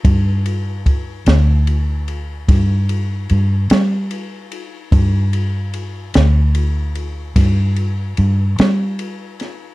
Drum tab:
RD |xxxxxxxxxxxx|xxxxxxxxxxxx|
SD |---o--o--o--|---o--o--o-o|
BD |o-o---o-----|o-----o-----|